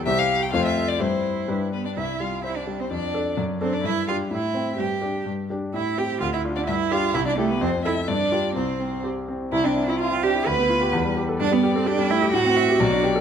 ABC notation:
X:1
M:2/4
L:1/16
Q:1/4=128
K:C
V:1 name="Violin"
e f2 g f e2 d | c4 z2 B d | e2 f2 e d2 c | d4 z2 c d |
e2 f2 e4 | g4 z4 | e2 g2 f e2 d | e2 f2 e d A B |
c2 e2 d4 | c4 z4 | E D2 E F2 G2 | B6 z2 |
d4 g4 | ^f2 e2 d4 |]
V:2 name="Cello"
G4 F4 | E6 B, D | E2 F2 E D2 C | D4 z2 C D |
E2 F2 E4 | G4 z4 | E2 G2 F E2 D | E2 F2 E D A, B, |
C2 E2 D4 | C4 z4 | E D2 E F2 G2 | B6 z2 |
D B,2 C D2 E2 | ^F6 z2 |]
V:3 name="Grand piano"
[C,,G,Gc]4 [F,,A,Fc]4 | [G,,G,Ec]4 [G,,G,DB]4 | C,,2 G,2 c2 G,2 | F,,2 [DA]2 ^F,,2 [DA]2 |
G,,2 [DG]2 A,,2 [Cc]2 | G,,2 [DG]2 G,,2 [DG]2 | A,,2 [CG]2 D,,2 [DF]2 | G,,2 [DG]2 C,,2 [EG]2 |
F,,2 [EA]2 G,,2 [FG]2 | C,,2 C2 G2 C2 | C,, C E F E C D E | D,, B, F G E,, G, G A |
G,, G, G A G G, A, G | A,, C ^F G B,,, D G A |]